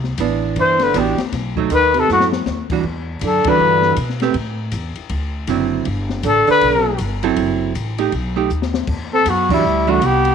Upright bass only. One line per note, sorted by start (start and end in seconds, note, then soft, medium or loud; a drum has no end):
0.00 0.17 C2 medium
0.18 0.56 A1 medium
0.56 0.94 G1 medium
0.94 1.17 A1 medium
1.20 muted upright bass stroke soft
1.32 1.69 B1 medium
1.70 2.07 D#2 medium
2.09 2.45 F#2 medium
2.46 2.83 D#2 medium
2.84 3.21 E2 medium
3.22 3.44 F#2 medium
3.45 muted upright bass stroke soft
3.59 3.96 G2 medium
3.97 4.34 B2 medium
4.34 4.72 A2 medium
4.72 4.95 E2 medium
4.98 muted upright bass stroke soft
5.10 5.47 D2 medium
5.48 5.85 F#1 medium
5.85 6.23 G1 medium
6.24 6.46 A1 medium
6.48 muted upright bass stroke soft
6.62 6.99 B1 medium
6.99 7.36 G1 medium
7.37 7.74 F#1 medium
7.74 8.12 A1 medium
8.12 8.50 B1 medium
8.50 8.87 D#2 medium
8.88 9.25 E2 medium
9.26 9.63 F#2 medium
9.65 10.00 D2 medium
10.01 10.35 C2 medium